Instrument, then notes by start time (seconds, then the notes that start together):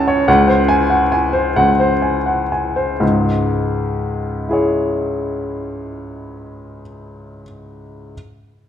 grand piano
Already playing: C#3 C#5 F#5 G#5 A5
0.08 C#5
0.28 C#2 F#5
0.48 C5
0.69 G#5
0.90 F#5
1.12 G#5
1.33 C5
1.56 C#2 F#5
1.80 C5
2.02 G#5
2.26 F#5
2.52 G#5
2.76 C5
3.00 C#2 G#2
4.49 E4 G#4 C#5